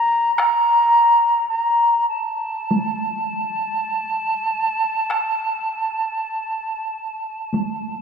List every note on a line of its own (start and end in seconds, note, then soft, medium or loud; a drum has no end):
0.00 0.33 A#5 medium
0.34 1.48 A#5 medium
0.34 taiko rim medium
1.48 2.05 A#5 medium
2.08 8.02 A5 medium
2.71 taiko high medium
5.10 taiko rim medium
7.53 taiko high soft